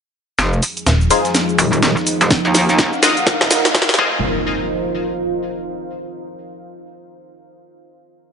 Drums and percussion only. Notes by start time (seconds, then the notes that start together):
0.39 snare, closed hi-hat, cabasa
0.53 cabasa
0.63 closed hi-hat, open hi-hat, cabasa
0.77 closed hi-hat, cabasa
0.87 snare, closed hi-hat, cabasa
1.01 cabasa
1.11 closed hi-hat, open hi-hat, cabasa
1.25 snare, closed hi-hat, cabasa
1.35 snare, closed hi-hat, cabasa
1.49 cabasa
1.59 closed hi-hat, open hi-hat, cabasa
1.73 closed hi-hat, cabasa
1.83 snare, closed hi-hat, cabasa
1.97 snare, cabasa
2.07 closed hi-hat, open hi-hat, cabasa
2.21 snare, closed hi-hat, cabasa
2.31 kick, snare, closed hi-hat, cabasa
2.45 cabasa
2.55 snare, closed hi-hat, open hi-hat, cabasa
2.69 closed hi-hat, cabasa
2.79 kick, snare, closed hi-hat, cabasa
2.93 cabasa
3.03 snare, open hi-hat, cabasa
3.17 closed hi-hat, cabasa
3.27 kick, snare, closed hi-hat, cabasa
3.41 snare, cabasa
3.51 snare, closed hi-hat, open hi-hat, cabasa
3.65 snare, closed hi-hat, cabasa
3.75 kick, snare, closed hi-hat, cabasa
3.82 snare
3.89 snare, cabasa
3.94 snare
3.99 kick